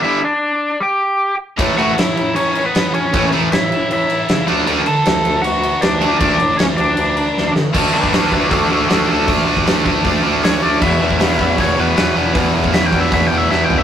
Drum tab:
CC |----------------|x-x-x-x-x-x-x-x-|x-x-x-x-x-x-x-x-|x-x-x-x-x-x-x-x-|
HH |----------------|----------------|----------------|----------------|
SD |----------------|----o-------o---|----o-------o---|----o-------o---|
FT |----------------|----------------|----------------|----------------|
BD |----------------|o---------------|o---------------|----------------|

CC |x-x-x-x-x-x-----|x---------------|----------------|x---------------|
HH |----------------|----o---o---o---|o---o---o---o---|----o---o---o---|
SD |----o-------o-o-|----o-------o---|----o-------o---|----o-------o---|
FT |----------------|----------------|----------------|----------------|
BD |o---------------|o--o--o-o-------|o--o--o-o-------|o--o--o-o-------|

CC |----------------|
HH |o---o---o-------|
SD |----o-------o---|
FT |--------------o-|
BD |o--o--o-o-------|